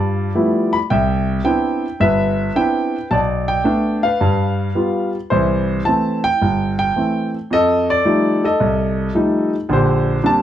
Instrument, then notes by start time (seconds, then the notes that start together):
grand piano
Already playing: G2 F4 D5
0.35 F3 G3 A3 B3 E4
0.73 B5
0.90 C2 E5 G5
1.44 B3 C4 D4 E4 G5
2.00 G1 B4 E5
2.56 B3 C4 D4 E4 G5
3.11 B1 D5 A5
3.48 G5
3.64 A3 B3 D4
4.03 B4 F5
4.21 G2
4.75 G3 B3 F4
5.30 C2 E3 E4 C5
5.85 E3 A3 C4 A5
6.24 G5
6.42 G1
6.79 G5
6.96 E3 A3 C4
7.51 F2 A4 D#5
7.90 D5
8.05 F3 G3 A3 D#4
8.44 A4 D#5
8.60 C2
9.15 F3 G3 A3 D#4
9.69 A#1 D3 C5
9.74 G4
10.23 G3 A#3 C4 D4 A5